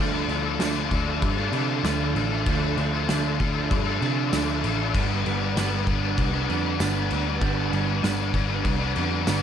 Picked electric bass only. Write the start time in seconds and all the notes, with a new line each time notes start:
0.00 D2
0.29 D2
0.59 D2
0.91 D2
1.22 G2
1.52 C3
1.84 D2
2.15 A1
2.46 D2
2.77 D2
3.09 D2
3.40 D2
3.71 G2
4.02 C3
4.33 D2
4.64 A1
4.95 G1
5.26 G1
5.56 G1
5.87 G1
6.17 C2
6.49 F2
6.80 G1
7.11 D2
7.41 G1
7.72 G1
8.04 G1
8.34 G1
8.65 C2
8.96 F2
9.28 G1